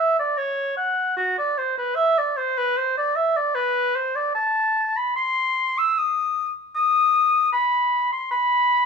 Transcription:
Already playing: E5
0.19 D5
0.38 C#5
0.77 F#5
1.17 F#4
1.38 D5
1.58 C5
1.78 B4
1.95 E5
2.18 D5
2.37 C5
2.58 B4
2.77 C5
2.97 D5
3.16 E5
3.36 D5
3.55 B4
3.96 C5
4.16 D5
4.35 A5
4.97 B5
5.16 C6
5.78 E6
5.98 D#6
6.75 D#6
7.52 B5
8.12 C6
8.31 B5

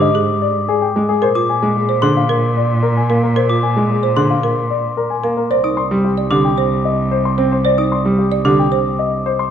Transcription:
Already playing: G#2
0.02 D#5
0.15 G#4
0.42 D5
0.69 G#4
0.82 G5
0.96 G#3
1.09 G#4
1.22 A#2 A#4 C5
1.35 F4 D6
1.50 G#5
1.63 G#3
1.77 G#4
1.89 C5
2.02 D3 G#4 C6
2.17 F5
2.29 A#4
2.57 D5
2.83 A#4
2.97 G#5
3.10 A#3 A#4
3.23 A#4
3.36 A#4 C5
3.49 F4 D6
3.63 G#5
3.77 G#3
3.90 G#4
4.03 C5
4.16 D3 G#4 C6
4.30 F5
4.43 A#4
4.70 D5
4.97 A#4
5.10 G#5
5.24 A#3 A#4
5.37 A#4
5.50 C2 C5 D5
5.64 D#4 D#6
5.77 C6
5.91 G3
6.05 G4
6.18 D5
6.31 D3 G4 D6
6.45 G5
6.58 C5
6.85 D#5
7.11 C5
7.25 C6
7.38 C4 C5
7.52 C5
7.65 C5 D5
7.78 D#4 D#6
7.92 C6
8.05 G3
8.19 G4
8.32 D5
8.45 D3 G4 D6
8.59 G5
8.72 C5
8.99 D#5
9.26 C5
9.39 C6

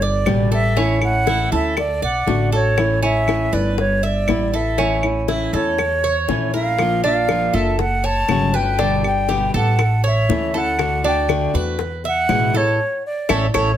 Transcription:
Already playing: G1
0.01 D5, high bongo
0.26 A1 B2 D3 G3 B3 G4, high bongo, low bongo, claves
0.51 G3 B3 G4 A4 E5, high bongo
0.76 E3 A3 C#4 E4, high bongo
1.01 A3 C#4 E4 F#5, high bongo, claves
1.27 E3 A3 C#4 E4, high bongo
1.52 D2 A3 C#4 E4 A4 E5
1.77 D5, muted nylon-string guitar stroke, high bongo, claves
2.02 B1 D5 F#5, high bongo
2.27 A1 D3 A3 D4 F#4, high bongo, low bongo
2.52 A3 D4 F#4 A4 C#5, high bongo
2.77 E3 A3 C#4 E4, high bongo, claves
3.02 A3 C#4 E4 E5, high bongo
3.27 E3 A3 C#4 E4, high bongo, claves
3.52 G1 A3 C#4 E4 B4 D5
3.78 C#5, muted nylon-string guitar stroke, high bongo
4.03 D5 E5, high bongo
4.27 A1 G3 B3 E4, high bongo, low bongo, claves
4.53 B3 E4 A4 E5, high bongo
4.78 E3 A3 C#4 E4, high bongo
5.03 A3 C#4 E4, high bongo, claves
5.28 E3 A3 C#4 E4 E5, high bongo
5.53 E2 A3 C#4 E4 A4 C#5
5.78 muted nylon-string guitar stroke, high bongo, claves
6.04 C#5, high bongo
6.28 A#1 E3 A3 C#4 E4, high bongo, low bongo
6.54 A3 C#4 E4 A#4 F5, high bongo
6.79 F3 A#3 D4 F4, high bongo, claves
7.04 A#3 D4 F4 F5, high bongo
7.29 F3 A#3 D4 F4, high bongo, claves
7.54 F#1 A#3 D4 F4 A4 E5
7.79 F#5, muted nylon-string guitar stroke, high bongo
8.04 C#5 A5, high bongo
8.29 G1 C#3 F#3 A3 C#4 F#4, high bongo, low bongo, claves
8.54 A3 F#4 B4 G5, high bongo
8.78 B2 D3 G3 B3 D4 G4, high bongo
9.04 G3 B3 G4 G5, high bongo, claves
9.29 B2 D3 G3 B3 G4, high bongo
9.54 A1 G3 B3 G4 A4 F#5
9.79 muted nylon-string guitar stroke, high bongo, claves
10.04 C#5 E5, high bongo
10.29 D2 E3 A3 C#4 E4, high bongo, low bongo
10.54 A3 C#4 E4 A4 F#5, high bongo
10.79 D3 A3 D4 F#4, high bongo, claves
11.04 A3 D4 F#4 G5, high bongo
11.28 D3 A3 D4 F#4, high bongo, claves
11.54 E2 A3 D4 F#4 B4
11.79 muted nylon-string guitar stroke, high bongo
12.04 E5 F#5, high bongo
12.29 A1 B2 E3 G#3 B3 E4, high bongo, low bongo, claves
12.54 G#3 B3 E4 A4 C#5, high bongo
13.06 D5
13.29 A1 E3 A3 C#4 E4 A4 C#5, high bongo, claves
13.54 A1 E3 A3 C#4 E4 A4 C#5, high bongo, claves

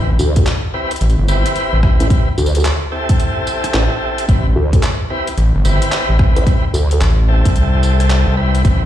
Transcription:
Already playing: A1 C4 E4 G4 B4
0.19 D2, tambourine
0.36 kick, closed hi-hat
0.46 clap, closed hi-hat
0.74 C4 E4 G4 B4
0.91 closed hi-hat
0.96 closed hi-hat
1.01 A1, closed hi-hat
1.10 closed hi-hat
1.18 G1
1.28 G1 C4 E4 G4 B4, tambourine
1.46 closed hi-hat
1.56 closed hi-hat
1.73 A1
1.83 C4 E4 G4 B4, kick, cross-stick
2.00 A1, closed hi-hat
2.10 C4 E4 G4 B4, kick, closed hi-hat
2.38 D2, tambourine
2.46 tambourine
2.55 closed hi-hat, tambourine
2.60 tambourine
2.65 clap, closed hi-hat
2.92 C4 E4 G4 A4
3.09 kick, closed hi-hat
3.20 closed hi-hat
3.47 tambourine
3.64 cross-stick, closed hi-hat
3.74 A1, clap
4.18 closed hi-hat
4.28 A1 C4 E4 G4 B4, kick, closed hi-hat
4.56 D2
4.73 kick, closed hi-hat
4.83 clap, closed hi-hat
5.10 C4 E4 G4 B4
5.27 closed hi-hat
5.38 A1, closed hi-hat
5.55 G1
5.65 G1 C4 E4 G4 B4, tambourine
5.82 closed hi-hat
5.92 clap, closed hi-hat
6.09 A1
6.19 C4 E4 G4 B4, kick, cross-stick
6.36 A1, closed hi-hat
6.46 C4 E4 G4 B4, kick, closed hi-hat
6.74 D2, tambourine
6.91 closed hi-hat
7.01 A1, clap, closed hi-hat
7.28 C4 E4 G4 A4
7.45 C2, kick, closed hi-hat
7.56 closed hi-hat
7.83 tambourine
8.00 cross-stick, closed hi-hat
8.10 clap, closed hi-hat
8.27 C2
8.37 C4 E4 G4 B4
8.55 closed hi-hat
8.65 A1 C4 E4 G4 B4, kick, closed hi-hat

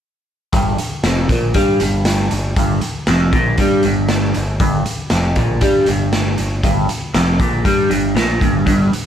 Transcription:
0.53 G1 G2, kick, closed hi-hat
0.78 muted picked electric bass stroke, muted clean electric guitar stroke, closed hi-hat
1.03 F1 F2, snare, closed hi-hat
1.29 A#1 A#2, kick, closed hi-hat
1.54 G2 G3, kick, closed hi-hat
1.80 G1 G2, closed hi-hat
2.05 snare, closed hi-hat
2.31 G1 G2, closed hi-hat
2.56 G1 G2, kick, closed hi-hat
2.81 muted clean electric guitar stroke, muted picked electric bass stroke, closed hi-hat
3.07 F1 F2, snare, closed hi-hat
3.33 A#1 A#2, kick, closed hi-hat
3.58 G2 G3, kick, closed hi-hat
3.83 G1 G2, closed hi-hat
4.09 snare, closed hi-hat
4.34 G1 G2, closed hi-hat
4.60 G1 G2, kick, closed hi-hat
4.86 muted clean electric guitar stroke, muted picked electric bass stroke, closed hi-hat
5.10 F1 F2, snare, closed hi-hat
5.36 A#1 A#2, kick, closed hi-hat
5.61 G2 G3, kick, closed hi-hat
5.86 G1 G2, closed hi-hat
6.13 snare, closed hi-hat
6.38 G1 G2, closed hi-hat
6.63 G1 G2, kick, closed hi-hat
6.89 muted clean electric guitar stroke, muted picked electric bass stroke, closed hi-hat
7.14 F1 F2, snare, closed hi-hat
7.40 A#1 A#2, kick, closed hi-hat
7.65 G2 G3, kick, closed hi-hat
7.90 G1 G2, closed hi-hat
8.15 A#1 A#2, snare, closed hi-hat
8.41 G1 G2, kick, closed hi-hat
8.66 G1 G2, kick, closed hi-hat
8.92 muted picked electric bass stroke, muted clean electric guitar stroke, closed hi-hat

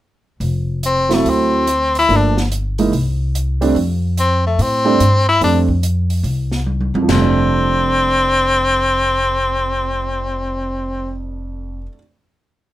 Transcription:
0.40 F1, open hi-hat
0.83 C4, closed hi-hat
1.09 F#3 A3 C4 E4, snare, open hi-hat
1.14 A3
1.25 D2, open hi-hat
1.30 C4
1.67 closed hi-hat
1.95 E4, open hi-hat
2.09 G1 F3 A3 A#3 D4, open hi-hat
2.16 D4
2.37 snare
2.52 closed hi-hat
2.78 E3 G#3 A#3 D#4, open hi-hat
2.92 C2, open hi-hat
3.35 closed hi-hat
3.61 G3 A3 C4 D4, open hi-hat
3.75 F2, open hi-hat
4.17 C4, closed hi-hat
4.46 A3
4.59 A2 C4, open hi-hat
4.85 G3 A3 C4 D4
5.00 G2, closed hi-hat
5.29 E4
5.41 F2 G3 A3 C4 D4, open hi-hat
5.69 kick
5.83 closed hi-hat
6.10 open hi-hat
6.23 C2, open hi-hat
6.51 snare
6.66 high tom
6.81 high tom
6.94 E2 F2, high tom
7.03 F3
7.08 F1 G3 C4, snare, floor tom, china
7.15 A3
7.21 D4

